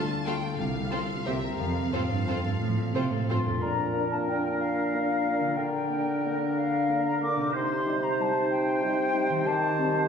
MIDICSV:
0, 0, Header, 1, 11, 480
1, 0, Start_track
1, 0, Key_signature, -1, "major"
1, 0, Tempo, 334635
1, 841, Time_signature, 3, 2, 24, 8
1, 5190, Key_signature, -2, "major"
1, 6140, Tempo, 324500
1, 14720, End_track
2, 0, Start_track
2, 0, Title_t, "Flute"
2, 0, Program_c, 0, 73
2, 4737, Note_on_c, 0, 84, 52
2, 5192, Note_on_c, 0, 82, 60
2, 5214, Note_off_c, 0, 84, 0
2, 5889, Note_off_c, 0, 82, 0
2, 5898, Note_on_c, 0, 81, 48
2, 5984, Note_off_c, 0, 81, 0
2, 6133, Note_on_c, 0, 79, 52
2, 6580, Note_off_c, 0, 79, 0
2, 6589, Note_on_c, 0, 77, 59
2, 8035, Note_on_c, 0, 79, 56
2, 8057, Note_off_c, 0, 77, 0
2, 9499, Note_off_c, 0, 79, 0
2, 9515, Note_on_c, 0, 77, 53
2, 10227, Note_off_c, 0, 77, 0
2, 10252, Note_on_c, 0, 82, 59
2, 10483, Note_off_c, 0, 82, 0
2, 10492, Note_on_c, 0, 86, 59
2, 10951, Note_off_c, 0, 86, 0
2, 10975, Note_on_c, 0, 84, 61
2, 11687, Note_on_c, 0, 82, 58
2, 11709, Note_off_c, 0, 84, 0
2, 11953, Note_on_c, 0, 81, 59
2, 11975, Note_off_c, 0, 82, 0
2, 12379, Note_off_c, 0, 81, 0
2, 12388, Note_on_c, 0, 79, 69
2, 13808, Note_on_c, 0, 81, 68
2, 13830, Note_off_c, 0, 79, 0
2, 14720, Note_off_c, 0, 81, 0
2, 14720, End_track
3, 0, Start_track
3, 0, Title_t, "Violin section"
3, 0, Program_c, 1, 48
3, 0, Note_on_c, 1, 81, 69
3, 357, Note_off_c, 1, 81, 0
3, 378, Note_on_c, 1, 79, 66
3, 834, Note_on_c, 1, 77, 60
3, 838, Note_off_c, 1, 79, 0
3, 1780, Note_off_c, 1, 77, 0
3, 1808, Note_on_c, 1, 76, 60
3, 2269, Note_on_c, 1, 77, 57
3, 2280, Note_off_c, 1, 76, 0
3, 4668, Note_off_c, 1, 77, 0
3, 14720, End_track
4, 0, Start_track
4, 0, Title_t, "Oboe"
4, 0, Program_c, 2, 68
4, 5190, Note_on_c, 2, 70, 47
4, 8004, Note_off_c, 2, 70, 0
4, 8061, Note_on_c, 2, 70, 46
4, 10956, Note_on_c, 2, 72, 46
4, 10978, Note_off_c, 2, 70, 0
4, 13819, Note_off_c, 2, 72, 0
4, 13828, Note_on_c, 2, 72, 50
4, 14720, Note_off_c, 2, 72, 0
4, 14720, End_track
5, 0, Start_track
5, 0, Title_t, "Violin section"
5, 0, Program_c, 3, 48
5, 380, Note_on_c, 3, 69, 41
5, 382, Note_on_c, 3, 77, 40
5, 495, Note_off_c, 3, 69, 0
5, 497, Note_off_c, 3, 77, 0
5, 1297, Note_on_c, 3, 72, 38
5, 1301, Note_on_c, 3, 69, 40
5, 1412, Note_off_c, 3, 72, 0
5, 1416, Note_off_c, 3, 69, 0
5, 1799, Note_on_c, 3, 72, 37
5, 1800, Note_on_c, 3, 70, 38
5, 1914, Note_off_c, 3, 72, 0
5, 1915, Note_off_c, 3, 70, 0
5, 2762, Note_on_c, 3, 72, 39
5, 2764, Note_on_c, 3, 69, 36
5, 2876, Note_off_c, 3, 72, 0
5, 2878, Note_off_c, 3, 69, 0
5, 3265, Note_on_c, 3, 72, 37
5, 3268, Note_on_c, 3, 69, 37
5, 3380, Note_off_c, 3, 72, 0
5, 3382, Note_off_c, 3, 69, 0
5, 4227, Note_on_c, 3, 69, 37
5, 4229, Note_on_c, 3, 72, 36
5, 4341, Note_off_c, 3, 69, 0
5, 4344, Note_off_c, 3, 72, 0
5, 4729, Note_on_c, 3, 69, 34
5, 4731, Note_on_c, 3, 72, 33
5, 4844, Note_off_c, 3, 69, 0
5, 4846, Note_off_c, 3, 72, 0
5, 14720, End_track
6, 0, Start_track
6, 0, Title_t, "Harp"
6, 0, Program_c, 4, 46
6, 0, Note_on_c, 4, 50, 51
6, 0, Note_on_c, 4, 57, 37
6, 0, Note_on_c, 4, 62, 36
6, 0, Note_on_c, 4, 69, 37
6, 0, Note_on_c, 4, 74, 43
6, 134, Note_on_c, 4, 65, 37
6, 357, Note_off_c, 4, 69, 0
6, 374, Note_on_c, 4, 69, 36
6, 583, Note_off_c, 4, 65, 0
6, 600, Note_on_c, 4, 65, 39
6, 838, Note_on_c, 4, 48, 43
6, 858, Note_off_c, 4, 74, 0
6, 859, Note_off_c, 4, 62, 0
6, 863, Note_off_c, 4, 50, 0
6, 1048, Note_off_c, 4, 57, 0
6, 1065, Note_on_c, 4, 57, 33
6, 1317, Note_on_c, 4, 60, 37
6, 1545, Note_off_c, 4, 65, 0
6, 1562, Note_on_c, 4, 65, 33
6, 1792, Note_off_c, 4, 48, 0
6, 1809, Note_on_c, 4, 48, 41
6, 1818, Note_off_c, 4, 69, 0
6, 1821, Note_off_c, 4, 57, 0
6, 1825, Note_off_c, 4, 65, 0
6, 2045, Note_on_c, 4, 67, 34
6, 2057, Note_on_c, 4, 70, 36
6, 2286, Note_on_c, 4, 53, 44
6, 2297, Note_off_c, 4, 67, 0
6, 2299, Note_off_c, 4, 48, 0
6, 2300, Note_off_c, 4, 70, 0
6, 2499, Note_off_c, 4, 60, 0
6, 2516, Note_on_c, 4, 60, 34
6, 2764, Note_on_c, 4, 65, 32
6, 3013, Note_on_c, 4, 69, 30
6, 3267, Note_on_c, 4, 72, 34
6, 3483, Note_off_c, 4, 69, 0
6, 3500, Note_on_c, 4, 69, 36
6, 3725, Note_off_c, 4, 53, 0
6, 3743, Note_on_c, 4, 53, 39
6, 3953, Note_off_c, 4, 60, 0
6, 3971, Note_on_c, 4, 60, 32
6, 4205, Note_off_c, 4, 65, 0
6, 4222, Note_on_c, 4, 65, 28
6, 4464, Note_off_c, 4, 69, 0
6, 4481, Note_on_c, 4, 69, 30
6, 4705, Note_off_c, 4, 72, 0
6, 4722, Note_on_c, 4, 72, 32
6, 4931, Note_on_c, 4, 46, 39
6, 4949, Note_off_c, 4, 69, 0
6, 4966, Note_on_c, 4, 69, 34
6, 4995, Note_on_c, 4, 62, 31
6, 5046, Note_off_c, 4, 65, 0
6, 5064, Note_on_c, 4, 65, 32
6, 5129, Note_on_c, 4, 70, 29
6, 5205, Note_off_c, 4, 60, 0
6, 5208, Note_off_c, 4, 72, 0
6, 5210, Note_off_c, 4, 69, 0
6, 7794, Note_on_c, 4, 50, 39
6, 7840, Note_off_c, 4, 62, 0
6, 7858, Note_on_c, 4, 62, 33
6, 7904, Note_off_c, 4, 65, 0
6, 7922, Note_on_c, 4, 65, 33
6, 7948, Note_off_c, 4, 46, 0
6, 7973, Note_off_c, 4, 70, 0
6, 7991, Note_on_c, 4, 70, 31
6, 8081, Note_off_c, 4, 53, 0
6, 10696, Note_on_c, 4, 48, 41
6, 10761, Note_on_c, 4, 63, 35
6, 10829, Note_on_c, 4, 67, 34
6, 10842, Note_off_c, 4, 50, 0
6, 10874, Note_off_c, 4, 62, 0
6, 10897, Note_on_c, 4, 72, 35
6, 10906, Note_off_c, 4, 65, 0
6, 10941, Note_off_c, 4, 70, 0
6, 13556, Note_on_c, 4, 51, 46
6, 13620, Note_on_c, 4, 60, 38
6, 13673, Note_off_c, 4, 67, 0
6, 13691, Note_on_c, 4, 67, 37
6, 13707, Note_off_c, 4, 48, 0
6, 13741, Note_off_c, 4, 72, 0
6, 13759, Note_on_c, 4, 72, 39
6, 14720, Note_off_c, 4, 51, 0
6, 14720, Note_off_c, 4, 60, 0
6, 14720, Note_off_c, 4, 63, 0
6, 14720, Note_off_c, 4, 67, 0
6, 14720, Note_off_c, 4, 72, 0
6, 14720, End_track
7, 0, Start_track
7, 0, Title_t, "Clarinet"
7, 0, Program_c, 5, 71
7, 5185, Note_on_c, 5, 62, 46
7, 8002, Note_off_c, 5, 62, 0
7, 8061, Note_on_c, 5, 62, 46
7, 10900, Note_off_c, 5, 62, 0
7, 10949, Note_on_c, 5, 63, 48
7, 13758, Note_off_c, 5, 63, 0
7, 13796, Note_on_c, 5, 67, 54
7, 14720, Note_off_c, 5, 67, 0
7, 14720, End_track
8, 0, Start_track
8, 0, Title_t, "Viola section"
8, 0, Program_c, 6, 48
8, 383, Note_on_c, 6, 65, 40
8, 384, Note_on_c, 6, 57, 40
8, 497, Note_off_c, 6, 65, 0
8, 499, Note_off_c, 6, 57, 0
8, 1305, Note_on_c, 6, 65, 37
8, 1310, Note_on_c, 6, 60, 35
8, 1419, Note_off_c, 6, 65, 0
8, 1425, Note_off_c, 6, 60, 0
8, 1820, Note_on_c, 6, 67, 36
8, 1826, Note_on_c, 6, 60, 35
8, 1935, Note_off_c, 6, 67, 0
8, 1940, Note_off_c, 6, 60, 0
8, 2781, Note_on_c, 6, 65, 32
8, 2784, Note_on_c, 6, 60, 35
8, 2896, Note_off_c, 6, 65, 0
8, 2898, Note_off_c, 6, 60, 0
8, 3284, Note_on_c, 6, 65, 35
8, 3285, Note_on_c, 6, 60, 37
8, 3398, Note_off_c, 6, 65, 0
8, 3400, Note_off_c, 6, 60, 0
8, 4241, Note_on_c, 6, 65, 33
8, 4245, Note_on_c, 6, 60, 35
8, 4355, Note_off_c, 6, 65, 0
8, 4360, Note_off_c, 6, 60, 0
8, 4729, Note_on_c, 6, 65, 36
8, 4730, Note_on_c, 6, 60, 34
8, 4844, Note_off_c, 6, 65, 0
8, 4845, Note_off_c, 6, 60, 0
8, 14720, End_track
9, 0, Start_track
9, 0, Title_t, "French horn section"
9, 0, Program_c, 7, 60
9, 5645, Note_on_c, 7, 62, 35
9, 5650, Note_on_c, 7, 58, 40
9, 5823, Note_off_c, 7, 62, 0
9, 5827, Note_off_c, 7, 58, 0
9, 6144, Note_on_c, 7, 62, 39
9, 6157, Note_on_c, 7, 58, 35
9, 6316, Note_off_c, 7, 62, 0
9, 6326, Note_off_c, 7, 58, 0
9, 7124, Note_on_c, 7, 62, 38
9, 7132, Note_on_c, 7, 58, 37
9, 7299, Note_off_c, 7, 62, 0
9, 7306, Note_off_c, 7, 58, 0
9, 7594, Note_on_c, 7, 58, 36
9, 7598, Note_on_c, 7, 62, 37
9, 7764, Note_off_c, 7, 58, 0
9, 7767, Note_off_c, 7, 62, 0
9, 8519, Note_on_c, 7, 58, 41
9, 8524, Note_on_c, 7, 62, 38
9, 8705, Note_off_c, 7, 58, 0
9, 8708, Note_off_c, 7, 62, 0
9, 9054, Note_on_c, 7, 62, 37
9, 9058, Note_on_c, 7, 58, 39
9, 9223, Note_off_c, 7, 62, 0
9, 9226, Note_off_c, 7, 58, 0
9, 10003, Note_on_c, 7, 58, 39
9, 10003, Note_on_c, 7, 62, 39
9, 10181, Note_off_c, 7, 58, 0
9, 10181, Note_off_c, 7, 62, 0
9, 10488, Note_on_c, 7, 58, 39
9, 10492, Note_on_c, 7, 62, 40
9, 10659, Note_off_c, 7, 58, 0
9, 10662, Note_off_c, 7, 62, 0
9, 11448, Note_on_c, 7, 55, 39
9, 11451, Note_on_c, 7, 63, 41
9, 11623, Note_off_c, 7, 55, 0
9, 11625, Note_off_c, 7, 63, 0
9, 11925, Note_on_c, 7, 63, 40
9, 11940, Note_on_c, 7, 55, 40
9, 12093, Note_off_c, 7, 63, 0
9, 12104, Note_off_c, 7, 55, 0
9, 12853, Note_on_c, 7, 63, 42
9, 12858, Note_on_c, 7, 55, 42
9, 13033, Note_off_c, 7, 63, 0
9, 13038, Note_off_c, 7, 55, 0
9, 13332, Note_on_c, 7, 63, 44
9, 13340, Note_on_c, 7, 55, 39
9, 13506, Note_off_c, 7, 63, 0
9, 13512, Note_off_c, 7, 55, 0
9, 14285, Note_on_c, 7, 60, 42
9, 14293, Note_on_c, 7, 55, 46
9, 14464, Note_off_c, 7, 60, 0
9, 14470, Note_off_c, 7, 55, 0
9, 14720, End_track
10, 0, Start_track
10, 0, Title_t, "Bassoon"
10, 0, Program_c, 8, 70
10, 5195, Note_on_c, 8, 46, 47
10, 8007, Note_off_c, 8, 46, 0
10, 8068, Note_on_c, 8, 50, 50
10, 10903, Note_off_c, 8, 50, 0
10, 10968, Note_on_c, 8, 48, 51
10, 13830, Note_on_c, 8, 51, 54
10, 13852, Note_off_c, 8, 48, 0
10, 14720, Note_off_c, 8, 51, 0
10, 14720, End_track
11, 0, Start_track
11, 0, Title_t, "Cello section"
11, 0, Program_c, 10, 48
11, 847, Note_on_c, 10, 36, 55
11, 1230, Note_off_c, 10, 36, 0
11, 1800, Note_on_c, 10, 36, 45
11, 2199, Note_off_c, 10, 36, 0
11, 2273, Note_on_c, 10, 41, 48
11, 2675, Note_off_c, 10, 41, 0
11, 2772, Note_on_c, 10, 45, 51
11, 2873, Note_off_c, 10, 45, 0
11, 3031, Note_on_c, 10, 43, 47
11, 3271, Note_off_c, 10, 43, 0
11, 3276, Note_on_c, 10, 41, 44
11, 3516, Note_off_c, 10, 41, 0
11, 3520, Note_on_c, 10, 43, 45
11, 3742, Note_on_c, 10, 45, 55
11, 3744, Note_off_c, 10, 43, 0
11, 3971, Note_off_c, 10, 45, 0
11, 3985, Note_on_c, 10, 46, 49
11, 4225, Note_on_c, 10, 48, 51
11, 4227, Note_off_c, 10, 46, 0
11, 4475, Note_off_c, 10, 48, 0
11, 4477, Note_on_c, 10, 45, 48
11, 4722, Note_off_c, 10, 45, 0
11, 4734, Note_on_c, 10, 43, 44
11, 4968, Note_off_c, 10, 43, 0
11, 4977, Note_on_c, 10, 41, 39
11, 5198, Note_off_c, 10, 41, 0
11, 14720, End_track
0, 0, End_of_file